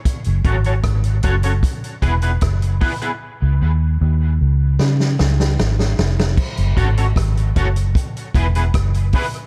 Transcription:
<<
  \new Staff \with { instrumentName = "Clean electric guitar" } { \time 4/4 \key fis \dorian \tempo 4 = 76 r8 <cis' fis' a' cis''>16 <cis' fis' a' cis''>16 r8 <cis' fis' a' cis''>16 <cis' fis' a' cis''>16 r8 <b e' gis' b'>16 <b e' gis' b'>16 r8 <b e' gis' b'>16 <b e' gis' b'>16 | r1 | r8 <cis' fis' a' cis''>16 <cis' fis' a' cis''>16 r8 <cis' fis' a' cis''>16 r8. <b e' gis' b'>16 <b e' gis' b'>16 r8 <b e' gis' b'>16 r16 | }
  \new Staff \with { instrumentName = "Fingered electric bass" } { \clef bass \time 4/4 \key fis \dorian r16 fis,,16 gis,,8 gis,,8 fis,,8 r8 e,,8 fis,,8 r8 | r16 cis,16 dis,8 dis,8 cis,8 cis8 cis,8 gis,,8 eis,,8 | r16 fis,,16 gis,,8 gis,,8 fis,,8 r8 e,,8 fis,,8 r8 | }
  \new DrumStaff \with { instrumentName = "Drums" } \drummode { \time 4/4 <hh bd>16 hh16 <hh bd>16 hh16 <hh bd ss>16 hh16 <hh bd>16 hh16 <hh bd>16 hh16 <hh bd>16 hh16 <hh bd ss>16 hh16 <hho bd>16 hh16 | r4 r4 sn16 sn16 sn16 sn16 sn16 sn16 sn16 sn16 | <cymc bd>16 hh16 <hh bd>16 hh16 <hh bd ss>16 hh16 <hh bd>16 hh16 <hh bd>16 hh16 <hh bd>16 hh16 <hh bd ss>16 hh16 <hho bd>16 hh16 | }
>>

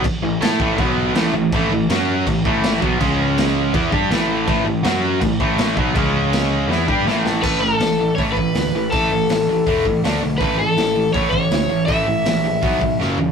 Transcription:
<<
  \new Staff \with { instrumentName = "Overdriven electric guitar" } { \time 4/4 \key a \major \tempo 4 = 162 r1 | r1 | r1 | r1 |
r1 | b'8 a'4. cis''8 b'4. | a'2. r4 | b'8 a'4. cis''8 cis''4. |
e''2. r4 | }
  \new Staff \with { instrumentName = "Distorted electric guitar" } { \clef bass \time 4/4 \key a \major r8 <a, e>8 <a e' a'>8 <a, e a>8 <b, fis b>4 <a, e a>8 <a, e>8 | <a, e a>8 <a, e>8 <fis cis' fis'>4 <a, e>8 <a, e a>4 <b, fis b>8 | <cis gis cis'>2 <e b e'>8 <g d' g'>8 <a, e a>4 | <a, e a>8 <a, e>8 <fis cis' fis'>4 <a, e>8 <a, e a>4 <b, fis b>8 |
<cis gis cis'>2 <e b e'>8 <g d' g'>8 <a, e a>4 | r1 | r1 | r1 |
r1 | }
  \new Staff \with { instrumentName = "Distorted electric guitar" } { \clef bass \time 4/4 \key a \major r8 <a, e>8 <a e' a'>8 <a, e a>8 <b, fis b>4 <a, e a>8 <a, e>8 | <a, e a>8 <a, e>8 <fis cis' fis'>4 <a, e>8 <a, e a>4 <b, fis b>8 | <cis gis cis'>2 <e b e'>8 <g d' g'>8 <a, e a>4 | <a, e a>8 <a, e>8 <fis cis' fis'>4 <a, e>8 <a, e a>4 <b, fis b>8 |
<cis gis cis'>2 <e b e'>8 <g d' g'>8 <a, e a>4 | <a, e a>8 <a, e>8 <a, e>8 <a, e>8 <a, e a>8 <a, e>8 <a, e>8 <a, e>8 | <a, e a>8 <a, e>8 <a, e>8 <a, e>8 <a, e a>8 <a, e>8 <d a d'>8 <d a>8 | <a, e a>8 <a, e>8 <a, e>8 <a, e>8 <a, e a>8 <a, e>8 <a, e>8 <a, e>8 |
<a, e a>8 <a, e>8 <a, e>8 <a, e>8 <b, fis b>8 <b, fis>8 <fis, cis fis>8 <fis, cis>8 | }
  \new Staff \with { instrumentName = "Picked electric bass" } { \clef bass \time 4/4 \key a \major r8 a,,8 a,8 a,,8 b,,4 a,,8 a,,8 | a,,8 a,,8 fis,4 a,,8 a,,4 b,,8 | cis,2 e,8 g,8 a,,4 | a,,8 a,,8 fis,4 a,,8 a,,4 b,,8 |
cis,2 e,8 g,8 a,,4 | a,,4 a,,4 a,,8 a,,8 d,8 a,,8 | a,,8 a,,8 a,,4 e,,8 a,,8 d,8 b,,8 | a,,4 a,,4 a,,8 a,,8 d,8 a,,8 |
a,,8 a,,8 bes,,4 b,,8 b,,8 fis,,8 e,,8 | }
  \new DrumStaff \with { instrumentName = "Drums" } \drummode { \time 4/4 <cymc bd>4 <cymc sn>8 bd8 <cymc bd>4 <cymc sn>4 | <cymc bd>4 <cymc sn>4 <cymc bd>8 bd8 <cymc sn>8 bd8 | <cymc bd>4 <cymc sn>4 <cymc bd>8 bd8 <cymc sn>4 | <cymc bd>4 <cymc sn>4 <cymc bd>8 bd8 <cymc sn>8 bd8 |
<cymc bd>4 <cymc sn>4 sn8 bd8 sn8 sn8 | <cymc bd>4 <hho sn>4 <hho bd>8 bd8 <hho sn>4 | <hho bd>4 <hho sn>4 <hho bd>8 bd8 <hho sn>4 | <hho bd>4 <hho sn>4 <hho bd>8 bd8 <hho sn>4 |
<hho bd>4 <hho sn>4 <hho bd>8 bd8 sn8 tomfh8 | }
>>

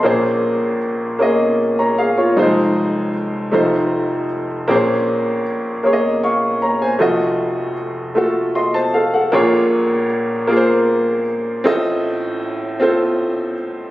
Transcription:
<<
  \new Staff \with { instrumentName = "Upright piano" } { \time 6/8 \key bes \minor \tempo 4. = 52 << { <ees'' c'''>16 r2 <des'' bes''>16 <aes' f''>16 <f' des''>16~ | <f' des''>16 r2 r8. | r2 <f'' des'''>8 <des'' bes''>16 <c'' aes''>16~ | <c'' aes''>16 r4. r16 <ees'' c'''>16 <c'' a''>16 <a' f''>16 <a' ges''>16~ |
<a' ges''>16 r2 r8. | r2. | } \\ { <bes des' aes' c''>4 r8 <bes des' aes' ees''>4 r8 | <g aes ees' f' c''>4 r8 <a ees' f' c''>4 r8 | <bes c' des' aes' c''>4 r8 <bes des' aes' des'' ees''>4 r8 | <a f' ges' ees''>4 r8 <a f' ges' a'>4 r8 |
<bes f' aes' des''>4 r8 <bes f' aes' bes' c''>4 r8 | <c' f' a' ees''>4 r8 <c' f' a' c''>4 r8 | } >> }
  \new Staff \with { instrumentName = "Upright piano" } { \clef bass \time 6/8 \key bes \minor <bes,, bes,>2. | <f,, f,>4. <f,, f,>4. | <bes,, bes,>2. | <f,, f,>2. |
<bes,, bes,>2. | <a,, a,>2. | }
>>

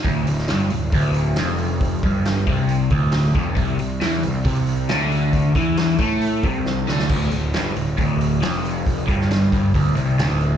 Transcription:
<<
  \new Staff \with { instrumentName = "Overdriven electric guitar" } { \clef bass \time 4/4 \key c \lydian \tempo 4 = 136 d,8 d,8 g,8 d,8 d,4 f,4~ | f,8 g,4 c4 d,4 f,8 | c8 c8 e8 c8 c4 d4~ | d8 e4 a4 c4 d8 |
d,8 d,8 g,8 d,8 d,4 f,4~ | f,8 g,4 g,8 d,8 c8 d,4 | }
  \new Staff \with { instrumentName = "Picked electric bass" } { \clef bass \time 4/4 \key c \lydian d,,8 d,,8 g,,8 d,,8 d,,4 f,,4~ | f,,8 g,,4 c,4 d,,4 f,,8 | c,8 c,8 e,8 c,8 c,4 d,4~ | d,8 e,4 a,4 c,4 d,8 |
d,,8 d,,8 g,,8 d,,8 d,,4 f,,4~ | f,,8 g,,4 g,,8 d,,8 c,8 d,,4 | }
  \new DrumStaff \with { instrumentName = "Drums" } \drummode { \time 4/4 <hho bd>8 hho16 sn16 <hho sn>8 hho8 <hho bd>8 hho8 <hho sn>8 hho8 | <hho bd>8 <hho bd>8 <hho sn>8 <hho bd>8 hho8 <hho bd>8 <hho sn>8 <hho bd>8 | <hho bd>8 hho8 <hho sn>8 hho8 <hho bd>8 hho8 <hho sn>8 hho8 | <hho bd>8 <hho bd>8 <hho sn>8 <hho bd>8 hho8 <hho bd>8 sn8 sn16 sn16 |
<cymc bd>8 hho8 <hho sn>8 hho8 <hho bd>8 hho8 <hho sn>8 hho8 | <hho bd>8 <hho bd>16 sn16 <hho sn>8 <hho bd>8 <hho bd>8 hho8 <hho sn>8 hho8 | }
>>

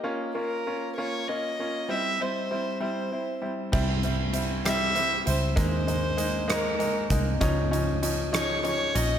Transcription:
<<
  \new Staff \with { instrumentName = "Violin" } { \time 6/8 \key c \phrygian \tempo 4. = 65 r8 bes'4 des''8 ees''4 | e''8 c''4 c''4 r8 | r4. e''4 c''8 | c''4. bes'4 r8 |
r4. des''8 des''8 ees''8 | }
  \new Staff \with { instrumentName = "Grand piano" } { \time 6/8 \key c \phrygian <bes des' f'>8 <bes des' f'>8 <bes des' f'>8 <bes des' f'>8 <bes des' f'>8 <bes des' f'>8 | <g c' e'>8 <g c' e'>8 <g c' e'>8 <g c' e'>8 <c' e'>8 <g c' e'>8 | <g c' e'>8 <g c' e'>8 <g c' e'>8 <g c' e'>8 <g c' e'>8 <g c' e'>8 | <aes bes ees'>8 <aes bes ees'>8 <aes bes ees'>8 <aes bes ees'>8 <aes bes ees'>8 <aes bes ees'>8 |
<f des' ees'>8 <f des' ees'>8 <f des' ees'>8 <f des' ees'>8 <f des' ees'>8 <f des' ees'>8 | }
  \new Staff \with { instrumentName = "Fingered electric bass" } { \clef bass \time 6/8 \key c \phrygian r2. | r2. | c,2~ c,8 des,8 | ees,2~ ees,8 c,8 |
des,2~ des,8 bes,,8 | }
  \new DrumStaff \with { instrumentName = "Drums" } \drummode { \time 6/8 r4. r4. | r4. r4. | <cymc bd>8 hh8 hh8 <hh ss>8 hh8 hh8 | <hh bd>8 hh8 hh8 <hh ss>8 hh8 <hh bd>8 |
<hh bd>8 hh8 hh8 <hh ss>8 hh8 hh8 | }
>>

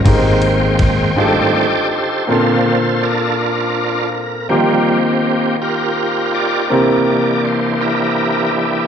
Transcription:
<<
  \new Staff \with { instrumentName = "Tonewheel organ" } { \time 6/8 \key f \minor \tempo 4. = 54 << { c''4. d''4 c''8 | \key bes \major c''4 bes'4. bes'8 | g'4. bes'4 d''8~ | d''4 c''8 bes'4 r8 | } \\ { g''4. <g' a'>4. | <f' a'>4 <d' f'>4. r8 | bes4. <f' g'>4 <g' bes'>8~ | <g' bes'>4 r8 <e' g'>4. | } >> }
  \new Staff \with { instrumentName = "Tonewheel organ" } { \time 6/8 \key f \minor <aes bes c'>4. <ees g a c'>8 r4 | \key bes \major <d bes c'>8 r2 r8 | <f g c'>8 r2 r8 | <e bes d'>2. | }
  \new Staff \with { instrumentName = "Grand piano" } { \time 6/8 \key f \minor <c' ees' g' aes' bes'>4. <d' ees' f' g' aes' a'>4. | \key bes \major <bes c' des' d' f' a'>2. | <bes c' ees' f' g'>2. | <bes c' e' g' bes'>2. | }
  \new Staff \with { instrumentName = "Grand piano" } { \clef bass \time 6/8 \key f \minor aes,4. r4. | \key bes \major bes,4. r4. | ees4. r4. | c4. r4. | }
  \new Staff \with { instrumentName = "Fingered electric bass" } { \clef bass \time 6/8 \key f \minor aes,,4. r4. | \key bes \major r2. | r2. | r2. | }
  \new DrumStaff \with { instrumentName = "Drums" } \drummode { \time 6/8 <bd cymr>8 cymr8 <bd cymr sn>8 r4. | r4. r4. | r4. r4. | r4. r4. | }
>>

